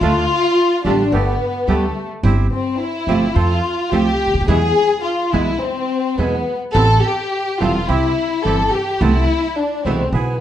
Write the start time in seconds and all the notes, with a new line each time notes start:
0.01 D2 D3 A3 D4 F4
0.85 A1 D3 G3 A3 B3 D4 F4 G4
1.12 G1 A3 B3 G4
1.67 D2 D3 G3 A3 B3 G4
2.23 G1 G3 C4 E4 G4
2.53 C4
2.80 E4
3.07 G1 C3 F3 A3 C4 E4 F4 G4
3.35 F2 C4 F4 A4
3.92 C2 C3 F3 A3 C4 F4 G4 A4
4.27 C#2
4.34 D2
4.41 D#2
4.47 E2 B2 E3 G#3 B3 E4 G#4
5.03 F4
5.32 B1 B2 E3 G#3 B3 E4 G#4
5.62 C4
6.18 E2 B2 E3 G#3 B3 E4 G#4
6.75 A1 C3 E3 B3 C4 E4 A4
7.04 G4
7.60 E1 C3 E3 G3 B3 C4 E4 F4 A4
7.88 C2 C4 E4 G4
8.45 G1 C3 E3 G3 C4 E4 G4 A4
8.73 G4
9.01 C2 C3 E3 A3 B3 C4 E4 A4
9.58 D4
9.85 C2 B2 E3 G#3 B3 C4 E4 A4
10.13 B1 B3 E4 G#4